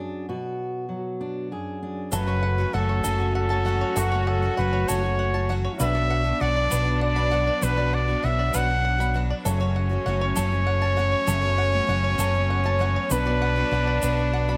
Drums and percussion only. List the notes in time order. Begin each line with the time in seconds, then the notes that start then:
2.12 shaker
3.04 shaker
3.96 shaker
4.89 shaker
5.80 shaker
6.72 shaker
7.62 shaker
8.54 shaker
9.01 shaker
9.46 shaker
10.36 shaker
11.28 shaker
12.19 shaker
13.10 shaker
14.02 shaker